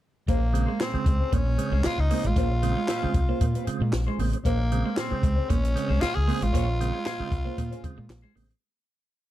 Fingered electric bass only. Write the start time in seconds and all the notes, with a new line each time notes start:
0.28 A#1
0.94 muted fingered electric bass stroke
1.06 C#2
1.33 A#1
1.71 C2
1.85 muted fingered electric bass stroke
1.98 C#2
2.24 A1
2.36 A#1
3.04 muted fingered electric bass stroke
3.15 C2
3.41 A#2
3.67 muted fingered electric bass stroke
3.81 A#2
3.93 A#1
4.19 A1
4.45 A#1
5.11 muted fingered electric bass stroke
5.23 C#2
5.50 A#1
5.90 C2
6.02 muted fingered electric bass stroke
6.17 C#2
6.42 A1
6.54 A#1
7.20 muted fingered electric bass stroke
7.32 C2
7.58 A#2
7.84 muted fingered electric bass stroke
7.98 A#2
8.09 A#1
8.36 A1